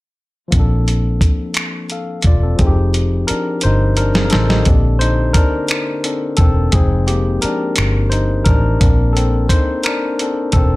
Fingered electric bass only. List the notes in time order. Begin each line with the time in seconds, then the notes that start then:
0.54 A#1
1.22 muted fingered electric bass stroke
2.26 E1
2.60 F1
3.31 muted fingered electric bass stroke
3.65 G1
4.35 A1
4.67 A#1
5.36 muted fingered electric bass stroke
6.40 E1
6.74 F1
7.44 muted fingered electric bass stroke
7.78 G1
8.47 A1
8.82 A#1
10.54 E1